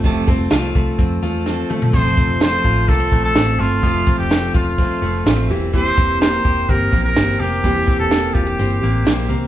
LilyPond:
<<
  \new Staff \with { instrumentName = "Trumpet" } { \time 4/4 \key c \mixolydian \tempo 4 = 126 r1 | c''4 c''4 a'8. a'8. f'8~ | f'8. g'8. f'2 r8 | c''4 c''4 bes'8. bes'8. g'8~ |
g'8. a'8. g'2 r8 | }
  \new Staff \with { instrumentName = "Clean electric guitar" } { \time 4/4 \key c \mixolydian <a c' f'>8 c'8 f'8 a8 c'8 f'8 c'8 a8 | f8 c'8 a8 f'8 bes16 c'16 a8 c'8 a8 | f8 c'8 a8 f'8 c'8 a8 c'8 e8 | e8 c'8 bes8 g'8 c'8 bes8 c'8 bes8 |
e8 c'8 bes8 f'16 g'16 c'8 bes8 c'8 bes8 | }
  \new Staff \with { instrumentName = "Steel-string acoustic guitar" } { \time 4/4 \key c \mixolydian <f, c f a c' a'>8 <f a c' a'>8 <f a c' a'>4. <f a c' a'>8 <f a c' a'>8 <f a c' a'>8 | <f, c f a c' f'>4 <f a c' f'>4 <f a c' f'>8 <f a c' f'>8 <f a c' f'>8 <f a c' f'>8 | <f, c f a c' f'>4 <f a c' f'>4 <f a c' f'>8 <f a c' f'>8 <f a c' f'>8 <bes c' g'>8 | <e bes c' g'>4 <e bes c' g'>4 <e bes c' g'>8 <bes c' g'>8 <e bes c' g'>8 <bes c' g'>8 |
<e bes c' g'>4 <e bes c' g'>4 <e bes c' g'>8 <bes c' g'>8 <e bes c' g'>8 <bes c' g'>8 | }
  \new Staff \with { instrumentName = "Picked electric bass" } { \clef bass \time 4/4 \key c \mixolydian f,,8 f,,8 c,8 c,8 f,8 e,4 r8 | f,,8 f,,4 a,,8 c,8 bes,,8 a,,8 g,,8 | f,,8 r16 f,,8. e,,8. r16 f,,8 a,,8 e,,8~ | e,,8 e,,4 e,,8 g,,8 bes,,8 g,,8 f,,8 |
e,,8 r16 e,,8. e,,8 g,,8 a,,8 bes,,8 c,8 | }
  \new DrumStaff \with { instrumentName = "Drums" } \drummode { \time 4/4 <hh bd>8 <hh bd>8 <hh sn>8 <hh bd>8 <hh bd>8 hh8 sn8 toml16 tomfh16 | <hh bd>8 <hh bd>8 <hh sn>8 <hh bd>8 <hh bd sn>8 <hh bd>8 <hh sn>8 hho8 | <hh bd>8 <hh bd>8 <hh sn>8 <hh bd>8 <hh bd>8 hh8 <hh sn>8 hho8 | <hh bd>8 <hh bd>8 <hh sn>8 <hh bd>8 <hh bd>8 <hh bd>8 <hh sn>8 hho8 |
<hh bd>8 <hh bd>8 <hh sn>8 <hh bd>8 <hh sn>8 hh8 <hh sn>8 hh8 | }
>>